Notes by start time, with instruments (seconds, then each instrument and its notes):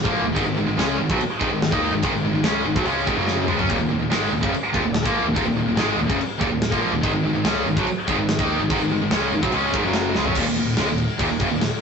0.05 picked electric bass A#1, distorted electric guitar A#2 F3 A#3, kick
0.24 picked electric bass D#1, distorted electric guitar D#2 A#2
0.36 picked electric bass G#1, distorted electric guitar G#2 D#3, kick, crash
0.44 picked electric bass G#1, distorted electric guitar G#2 D#3
0.48 distorted electric guitar G#2 D#3
0.56 picked electric bass G#1, distorted electric guitar G#2 D#3
0.67 picked electric bass G#1, distorted electric guitar G#2 D#3
0.77 picked electric bass C#2, distorted electric guitar C#3 G#3 C#4, snare, crash
0.98 picked electric bass G#1, distorted electric guitar G#2 D#3
1.09 picked electric bass B1, distorted electric guitar B2 F#3, kick
1.21 crash
1.41 picked electric bass G#1, distorted electric guitar G#2 D#3, kick
1.50 picked electric bass G#1, distorted electric guitar G#2 D#3
1.62 snare, crash
1.72 picked electric bass D#2, distorted electric guitar D#3 A#3 D#4, kick
1.91 picked electric bass G#1, distorted electric guitar G#2 D#3
2.02 picked electric bass G#1, distorted electric guitar G#2 D#3, kick, crash
2.12 picked electric bass G#1, distorted electric guitar G#2 D#3
2.23 picked electric bass G#1, distorted electric guitar G#2 D#3
2.34 picked electric bass G#1, distorted electric guitar G#2 D#3
2.43 picked electric bass C#2, distorted electric guitar C#3 G#3 C#4, snare, crash
2.64 picked electric bass G#1, distorted electric guitar G#2 D#3
2.75 picked electric bass B1, distorted electric guitar B2 F#3, kick
2.84 picked electric bass C#2, distorted electric guitar C#3 G#3 C#4, crash
3.07 picked electric bass G#1, distorted electric guitar G#2 D#3, kick
3.16 picked electric bass F#1, distorted electric guitar F#2 C#3 F#3
3.27 snare
3.37 high tom
3.48 picked electric bass C#2, distorted electric guitar C#3 G#3, mid tom
3.57 picked electric bass F#2, distorted electric guitar F#3 C#4, floor tom
3.69 picked electric bass D#1, distorted electric guitar D#2 A#2, kick, crash
3.79 picked electric bass D#1, distorted electric guitar D#2 A#2
3.89 picked electric bass D#1, distorted electric guitar D#2 A#2
3.99 picked electric bass D#1, distorted electric guitar D#2 A#2
4.09 picked electric bass G#1, distorted electric guitar G#2 G#3, snare, crash
4.13 distorted electric guitar D#3
4.30 picked electric bass D#1, distorted electric guitar D#2 A#2
4.43 picked electric bass F#1, distorted electric guitar F#2 C#3, kick
4.54 crash
4.74 picked electric bass D#1, distorted electric guitar D#2 A#2, kick
4.82 picked electric bass D#1, distorted electric guitar D#2
4.86 distorted electric guitar A#2
4.94 snare, crash
5.03 picked electric bass A#1, distorted electric guitar A#2 F3, kick
5.07 distorted electric guitar F3 A#3
5.24 picked electric bass D#1, distorted electric guitar D#2 A#2
5.36 picked electric bass D#1, distorted electric guitar D#2 A#2, kick, crash
5.43 picked electric bass D#1, distorted electric guitar D#2
5.48 distorted electric guitar D#2 A#2
5.55 picked electric bass D#1, distorted electric guitar D#2
5.59 distorted electric guitar A#2
5.64 picked electric bass D#1, distorted electric guitar D#2
5.69 distorted electric guitar A#2
5.75 picked electric bass G#1, distorted electric guitar G#2, snare, crash
5.79 distorted electric guitar G#2 D#3 G#3
5.96 picked electric bass D#1, distorted electric guitar D#2 A#2
6.09 picked electric bass F#1, distorted electric guitar F#2 C#3, kick
6.21 crash
6.40 picked electric bass D#1, distorted electric guitar D#2 A#2, kick
6.50 picked electric bass D#1, distorted electric guitar D#2 A#2
6.62 snare, crash
6.72 picked electric bass A#1, distorted electric guitar A#2 F3 A#3, kick
6.92 picked electric bass D#1, distorted electric guitar D#2 A#2
7.03 picked electric bass G#1, distorted electric guitar G#2 D#3, kick, crash
7.12 picked electric bass G#1, distorted electric guitar G#2 D#3
7.23 picked electric bass G#1, distorted electric guitar G#2 D#3
7.34 picked electric bass G#1, distorted electric guitar G#2 D#3
7.44 picked electric bass C#2, distorted electric guitar C#3 G#3 C#4, snare, crash
7.65 picked electric bass G#1, distorted electric guitar G#2 D#3
7.77 picked electric bass B1, distorted electric guitar B2 F#3, kick
7.87 crash
8.08 picked electric bass G#1, distorted electric guitar G#2 D#3, kick
8.18 picked electric bass G#1, distorted electric guitar G#2 D#3
8.29 snare, crash
8.39 picked electric bass D#2, distorted electric guitar D#3 A#3 D#4, kick
8.60 picked electric bass G#1, distorted electric guitar G#2 D#3
8.70 picked electric bass G#1, distorted electric guitar G#2 D#3, kick, crash
8.80 picked electric bass G#1, distorted electric guitar G#2 D#3
8.90 picked electric bass G#1, distorted electric guitar G#2 D#3
9.00 picked electric bass G#1, distorted electric guitar G#2 D#3
9.11 picked electric bass C#2, distorted electric guitar C#3 G#3 C#4, snare, crash
9.31 picked electric bass G#1, distorted electric guitar G#2 D#3
9.41 picked electric bass B1, distorted electric guitar B2 F#3, kick
9.52 picked electric bass C#2, distorted electric guitar C#3 G#3 C#4, crash
9.73 picked electric bass G#1, distorted electric guitar G#2 D#3, kick
9.83 picked electric bass F#1, distorted electric guitar F#2 C#3 F#3
9.93 snare, crash
10.15 picked electric bass C#2, distorted electric guitar C#3 G#3, snare
10.25 picked electric bass F#2, distorted electric guitar F#3 C#4, floor tom
10.35 picked electric bass D#1, distorted electric guitar D#2 A#2, kick, crash
10.46 picked electric bass D#1, distorted electric guitar D#2 A#2
10.56 picked electric bass D#1, distorted electric guitar D#2 A#2, crash
10.77 picked electric bass C#2, distorted electric guitar C#3 G#3, snare, crash
10.88 picked electric bass D#1, distorted electric guitar D#2 A#2
10.98 crash
11.19 picked electric bass D#1, distorted electric guitar D#2 A#2, kick, crash
11.29 picked electric bass D#1, distorted electric guitar D#2 A#2
11.40 picked electric bass F#1, distorted electric guitar F#2 C#3, kick, crash
11.49 picked electric bass D#1, distorted electric guitar D#2 A#2
11.61 snare, crash